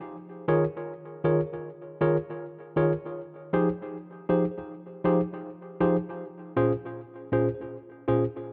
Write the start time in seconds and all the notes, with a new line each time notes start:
0.48 D#3 F4 G#4 A#4 C#5
1.24 D#3 F4 G#4 A#4 C#5
1.47 A#4 C#5
2.01 D#3 F4 G#4 A#4 C#5
2.77 D#3 F4 G#4 A#4 C#5
3.53 F3 D#4 G4 G#4 C5
4.29 F3 D#4 G4 G#4 C5
4.51 G#4 C5
5.05 F3 D#4 G4 G#4 C5
5.80 F3 D#4 G4 G#4 C5
6.57 A#2 C#4 F4 G#4 C5
7.32 A#2 C#4 F4 G#4 C5
7.54 G#4 C5
8.08 A#2 C#4 F4 G#4 C5